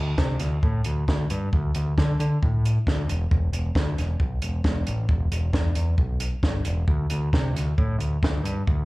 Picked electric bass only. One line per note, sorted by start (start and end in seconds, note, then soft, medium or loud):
0.00 0.13 D2 medium
0.18 0.35 C3 medium
0.40 0.58 D2 medium
0.63 0.80 A2 medium
0.86 1.03 D2 medium
1.08 1.25 D2 medium
1.31 1.48 G2 medium
1.53 1.70 D2 medium
1.76 1.93 D2 medium
1.98 2.15 D3 medium
2.20 2.37 D3 medium
2.43 2.77 A2 medium
2.87 3.04 D2 medium
3.08 3.26 E1 medium
3.31 3.48 E1 medium
3.52 3.70 E1 medium
3.75 3.93 D2 loud
3.97 4.15 E1 medium
4.20 4.38 B1 medium
4.42 4.60 E1 medium
4.64 4.82 E1 medium
4.88 5.05 A1 medium
5.09 5.27 E1 medium
5.32 5.49 E1 medium
5.53 5.71 E2 medium
5.76 5.94 E2 medium
5.99 6.34 B1 medium
6.43 6.61 G1 medium
6.66 6.83 E1 medium
6.88 7.05 D2 medium
7.11 7.29 D2 medium
7.33 7.50 C3 medium
7.54 7.72 D2 medium
7.78 7.95 A2 medium
7.98 8.17 D2 medium
8.23 8.40 D2 medium
8.43 8.61 G2 medium
8.68 8.85 D2 medium